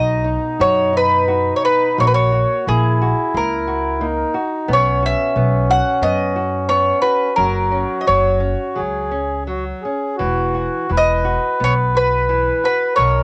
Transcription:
Already playing: B1 B2 D#4 F#4 D#5
0.24 D#4
0.59 F#2 F#4 C#5
0.93 D#4 B4
1.28 F#4
1.56 C#5
1.64 D#4 B4
1.97 A#1 A#3 F#4 C#5
2.07 B4
2.14 C#5
2.32 F#4
2.67 A#1 A#3 E4 G#4
3.02 F#4
3.34 C#2 A#3 A#4
3.67 F#4
4.00 A#3 D#4
4.34 F#4
4.68 B1 B3 C#4
4.73 C#5
5.02 F#4 E5
5.36 B1 B3
5.70 F#4 F#5
6.01 F#2 B3 D#5
6.36 F#4
6.69 B3 C#5
7.02 F#4 B4
7.36 F#1 F#3 F#4 A#4
7.71 C#4
8.01 D#5
8.07 F#1 F#3 C#5
8.40 C#4
8.76 C#2 F#3 G#4
9.11 C#4
9.47 F#3 F#4
9.83 C#4 G#4
10.17 E1 E3 F#4
10.55 F#4
10.90 E1 E3 B4
10.98 D#5
11.25 F#4
11.60 B1 B3
11.64 C#5
11.95 F#4 B4
12.29 E3
12.64 F#4 B4
12.95 B1 B2 A#4 C#5

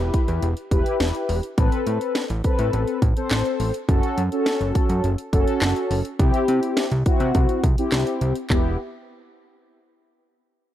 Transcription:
Already playing: E4 G4 B4
0.00 E1
0.14 kick, closed hi-hat
0.28 E2, closed hi-hat
0.42 E1, closed hi-hat
0.57 closed hi-hat
0.71 E1 E4 G4 B4, kick, closed hi-hat
0.86 closed hi-hat
1.00 E1, snare, closed hi-hat
1.15 closed hi-hat
1.29 E1, open hi-hat
1.43 closed hi-hat
1.58 A1 C4 A4 B4, kick, closed hi-hat
1.72 closed hi-hat
1.87 A2, closed hi-hat
2.01 closed hi-hat
2.15 snare, closed hi-hat
2.30 A1, closed hi-hat
2.44 C4 A4 B4, kick, closed hi-hat
2.59 A2, closed hi-hat
2.73 A1, closed hi-hat
2.88 closed hi-hat
3.02 A1, kick, closed hi-hat
3.17 C4 A4 C5, closed hi-hat
3.31 A1, snare, clap, closed hi-hat
3.45 closed hi-hat
3.60 A1, open hi-hat
3.74 closed hi-hat
3.89 F#1 C#4 F#4 A4, kick, closed hi-hat
4.03 closed hi-hat
4.17 F#2, closed hi-hat
4.32 C#4 F#4 A4, closed hi-hat
4.46 snare, closed hi-hat
4.61 F#1, closed hi-hat
4.75 kick, closed hi-hat
4.89 F#2, closed hi-hat
5.04 F#1, closed hi-hat
5.18 closed hi-hat
5.33 F#1 C#4 F#4 A4, kick, closed hi-hat
5.48 closed hi-hat
5.62 F#1, snare, clap, closed hi-hat
5.76 closed hi-hat
5.91 F#1, open hi-hat
6.05 closed hi-hat
6.19 C2 C4 E4 G4, kick, closed hi-hat
6.34 closed hi-hat
6.48 C3, closed hi-hat
6.63 closed hi-hat
6.77 snare, closed hi-hat
6.92 C2, closed hi-hat
7.06 C4 E4 F#4, kick, closed hi-hat
7.20 C3, closed hi-hat
7.35 C2, kick, closed hi-hat
7.49 closed hi-hat
7.64 C2, kick, closed hi-hat
7.78 C4 E4 G4, closed hi-hat
7.92 C2, snare, clap, closed hi-hat
8.07 closed hi-hat
8.21 C2, closed hi-hat
8.36 closed hi-hat
8.50 E1 B3 E4 G4, kick, clap

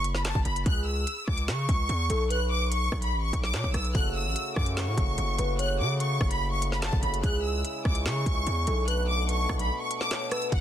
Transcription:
Already playing: F#1
0.04 closed hi-hat
0.14 B5, snare
0.25 A5, snare, clap, closed hi-hat
0.35 F#1, kick
0.45 F#1 B5, closed hi-hat
0.56 closed hi-hat
0.66 C#2 G#4 F#6, kick, closed hi-hat
0.87 E6
1.07 closed hi-hat
1.28 C#2 D6, kick, cross-stick
1.38 closed hi-hat
1.48 C#3 C#6, snare, clap
1.69 C#2, kick, closed hi-hat
1.89 E2, closed hi-hat
2.10 B1 A4, closed hi-hat
2.30 B4 F#6, closed hi-hat
2.51 D6
2.72 C#6, closed hi-hat
2.92 B1, kick, cross-stick
3.02 B5, closed hi-hat
3.13 A1
3.23 C#6
3.33 B1, kick, closed hi-hat
3.43 D6, snare
3.54 B2 C#5, snare, clap, closed hi-hat
3.64 B1, kick
3.74 B1 B4 E6, cross-stick, closed hi-hat
3.85 closed hi-hat
3.95 F#1 C#3 A3 F#4 A4 F#6, kick, closed hi-hat
4.15 E6
4.26 A1
4.36 closed hi-hat
4.56 F#2 D6, kick, cross-stick
4.66 closed hi-hat
4.77 C#6, snare, clap
4.87 A2
4.97 F#1, kick, closed hi-hat
5.18 F#1, closed hi-hat
5.38 F#1 B4, closed hi-hat
5.59 C#5 F#6, closed hi-hat
5.80 C#3 D6
6.00 C#6, closed hi-hat
6.21 F#1, kick, cross-stick
6.31 B5, closed hi-hat
6.52 C#6
6.62 closed hi-hat
6.72 B5, snare
6.82 A5, snare, clap, closed hi-hat
6.93 F#1, kick
7.03 F#1 B5, closed hi-hat
7.14 closed hi-hat
7.23 C#2 G#3 E4 G#4 F#6, kick, closed hi-hat
7.44 E6
7.65 closed hi-hat
7.85 C#2 D6, kick, cross-stick
7.95 closed hi-hat
8.06 C#3 C#6, snare, clap
8.26 C#2, kick, closed hi-hat
8.47 E2, closed hi-hat
8.67 B1 A4, closed hi-hat
8.88 B2 A3 D4 B4 F#6, closed hi-hat
9.08 D6
9.29 C#6, closed hi-hat
9.49 B1, kick, cross-stick
9.59 B5, closed hi-hat
9.80 C#6
9.91 closed hi-hat
10.01 D6, snare
10.11 C#5, snare, clap, closed hi-hat
10.31 B4 E6, cross-stick, closed hi-hat
10.42 closed hi-hat
10.52 F#1 F#5, kick, closed hi-hat

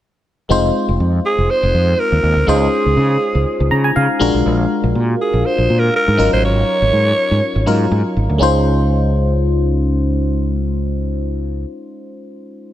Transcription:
0.49 F1 G#3 C4 D#4 F4 C5
0.89 F1
1.00 F2
1.26 G#4
1.38 F1
1.50 C5
1.63 F1
1.74 F2
1.99 A#4
2.12 D#2
2.23 D#2
2.36 D2
2.47 C#2 G#3 C#4 D#4 F4 G#4 C5
2.86 C#2
2.97 C#3
3.35 C#2
3.60 C#2
3.71 C#3 A#5
3.84 G#5
3.96 C#3 F5
4.19 A#1 G#3 D4 F4 F#4 A#4
4.34 B1
4.46 A#1
4.84 A#1
4.95 A#2
5.21 G#4
5.33 A#1
5.46 C5
5.58 A#1
5.70 A#2
5.79 A#4
5.96 A#4
6.08 G#2
6.17 G#1 F#3 C#4 D#4 F4 A#4
6.33 A1 C5
6.44 G#1 C#5
6.82 G#1
6.93 G#2
7.31 G#2
7.56 G#1
7.66 G#2 F#3 C#4 D#4 F4 A#4
7.91 G#2
8.17 G#1
8.30 D2
8.38 C#2 G#3 C#4 D#4 F4
8.43 C5

